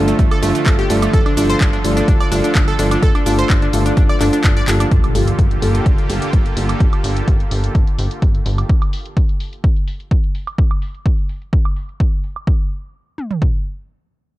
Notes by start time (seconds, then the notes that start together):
Already playing: G1 D3 F3 A3 D4 F4 A4
0.08 A3, closed hi-hat, shaker
0.19 G1 A3, kick, closed hi-hat, shaker
0.31 A4, closed hi-hat, high woodblock
0.43 G1 A3 D4 F4 A4, open hi-hat, shaker
0.55 A3, closed hi-hat, shaker
0.66 G1 A3, kick, clap, closed hi-hat, shaker
0.79 G4, closed hi-hat
0.90 G1 A3 D4 F4 A4, open hi-hat, shaker
1.02 A3, closed hi-hat, high woodblock, shaker
1.13 G1 A4, kick, closed hi-hat, shaker
1.26 D4, closed hi-hat, high woodblock
1.37 G1 A3 D4 F4 A4, open hi-hat, shaker
1.50 C5, closed hi-hat, shaker
1.61 G1 D4, kick, clap, closed hi-hat, shaker
1.73 D4, closed hi-hat
1.84 G1 A3 D4 F4 A4, open hi-hat, shaker
1.97 D4, closed hi-hat, shaker
2.08 G1 D4, kick, closed hi-hat, shaker
2.20 D5, closed hi-hat, high woodblock
2.32 G1 A3 D4 F4 A4, open hi-hat, shaker
2.44 D4, closed hi-hat, shaker
2.55 G1 D4, kick, clap, closed hi-hat, shaker
2.68 A4, closed hi-hat
2.79 G1 A3 D4 F4 A4, open hi-hat, shaker
2.91 D4, closed hi-hat, high woodblock, shaker
3.02 G1 A4, kick, closed hi-hat, shaker
3.15 D4, closed hi-hat, high woodblock
3.26 G1 A3 D4 F4 A4, open hi-hat, shaker
3.39 C5, closed hi-hat, shaker
3.50 G1 D4, kick, clap, closed hi-hat, shaker
3.62 D4, closed hi-hat
3.73 G1 A3 D4 F4 A4, open hi-hat, shaker
3.86 D4, closed hi-hat, shaker
3.97 G1 D4, kick, closed hi-hat, shaker
4.09 D5, closed hi-hat, high woodblock
4.21 G1 A3 D4 F4 A4, clap, open hi-hat, shaker
4.33 D4, closed hi-hat, shaker
4.44 G1 D4, kick, clap, closed hi-hat, shaker
4.57 D5, closed hi-hat
4.68 G1 A#3 D4 F4 G4 A4, clap, open hi-hat, shaker
4.80 D4, closed hi-hat, high woodblock, shaker
4.91 G1 D3 A#3 F4 G4 A4, kick, closed hi-hat, impact
5.04 closed hi-hat, high woodblock
5.15 G1 A#3 F4 G4 A4, open hi-hat
5.28 closed hi-hat
5.39 G1, kick, closed hi-hat
5.51 closed hi-hat
5.62 G1 A#3 F4 G4 A4, open hi-hat
5.75 closed hi-hat
5.86 G1, kick, closed hi-hat
5.98 closed hi-hat
6.10 G1 A#3 F4 G4 A4, open hi-hat
6.22 closed hi-hat
6.33 G1, kick, closed hi-hat
6.46 closed hi-hat
6.57 G1 A#3 F4 G4 A4, open hi-hat
6.69 closed hi-hat, high woodblock
6.80 G1, kick, closed hi-hat
6.93 closed hi-hat, high woodblock
7.04 G1, open hi-hat
7.17 closed hi-hat
7.28 G1, kick, closed hi-hat
7.40 closed hi-hat
7.51 G1, open hi-hat
7.64 closed hi-hat
7.75 G1, kick, closed hi-hat
7.87 closed hi-hat
7.99 G1, open hi-hat
8.11 closed hi-hat
8.22 G1, kick, closed hi-hat
8.35 closed hi-hat
8.46 G1, open hi-hat
8.58 closed hi-hat, high woodblock
8.69 kick, closed hi-hat
8.82 closed hi-hat, high woodblock
8.93 open hi-hat
9.06 closed hi-hat
9.17 kick, closed hi-hat
9.29 closed hi-hat
9.40 open hi-hat
9.53 closed hi-hat
9.64 kick, closed hi-hat
9.76 closed hi-hat
9.88 open hi-hat
10.00 closed hi-hat
10.11 kick, closed hi-hat
10.24 closed hi-hat
10.35 open hi-hat
10.47 closed hi-hat, high woodblock
10.58 kick, closed hi-hat
10.71 closed hi-hat, high woodblock
10.82 open hi-hat
10.95 closed hi-hat
11.06 kick, closed hi-hat
11.18 closed hi-hat
11.29 open hi-hat
11.42 closed hi-hat
11.53 kick
11.65 closed hi-hat, high woodblock
11.76 open hi-hat
11.89 closed hi-hat
12.00 kick
12.13 closed hi-hat
12.24 open hi-hat
12.36 closed hi-hat, high woodblock
12.47 kick
13.18 mid tom
13.31 floor tom
13.42 kick